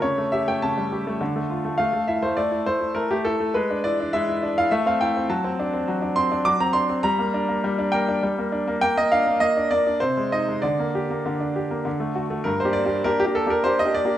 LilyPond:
<<
  \new Staff \with { instrumentName = "Grand piano" } { \time 3/4 \key a \phrygian \tempo 4 = 102 cis''8 e''16 g''16 a''4. r8 | f''8 e''16 c''16 d''8 c''8 bes'16 g'16 a'8 | b'8 d''8 e''8. f''16 e''16 f''16 g''8 | \key g \minor a''4. c'''8 d'''16 bes''16 c'''8 |
bes''4. g''8 r4 | g''16 ees''16 f''8 ees''8 d''8 c''8 ees''8 | d''2 r4 | bes'16 c''16 d''8 bes'16 g'16 a'16 bes'16 c''16 ees''16 d''8 | }
  \new Staff \with { instrumentName = "Grand piano" } { \time 3/4 \key a \phrygian cis16 a16 g'16 a16 cis16 g16 g'16 a16 d16 a16 f'16 a16 | a16 a16 e'16 a16 a16 e'16 a16 e'16 a16 a16 e'16 a16 | gis16 d'16 e'16 d'16 gis16 e'16 d'16 e'16 a16 c'16 e'16 c'16 | \key g \minor fis16 c'16 d'16 c'16 fis16 d'16 c'16 d'16 fis16 c'16 d'16 c'16 |
g16 bes16 d'16 bes16 g16 d'16 bes16 d'16 g16 bes16 d'16 bes16 | bes16 bes16 d'16 bes16 bes16 d'16 bes16 d'16 c16 aes16 ees'16 aes16 | d16 bes16 g'16 bes16 d16 d'16 g'16 bes16 d16 a16 fis'16 a16 | \tuplet 3/2 { g,8 <bes d' g'>8 <bes d' g'>8 <bes d' g'>8 <bes d' g'>8 <bes d' g'>8 <bes d' g'>8 <bes d' g'>8 <bes d' g'>8 } | }
>>